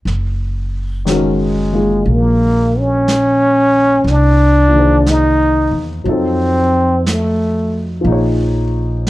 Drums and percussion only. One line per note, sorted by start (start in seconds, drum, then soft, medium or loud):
0.07 brush sweep soft
0.07 snare soft
1.07 brush sweep soft
1.07 snare soft
1.07 hi-hat pedal soft
2.08 brush sweep soft
3.08 brush sweep soft
3.08 snare soft
3.08 hi-hat pedal soft
4.07 brush sweep soft
4.07 snare soft
5.06 brush sweep soft
5.06 snare soft
5.06 hi-hat pedal soft
6.07 brush sweep soft
7.06 brush sweep soft
7.06 snare soft
7.06 hi-hat pedal medium
8.07 brush sweep soft
9.07 brush sweep soft
9.07 snare soft
9.07 hi-hat pedal soft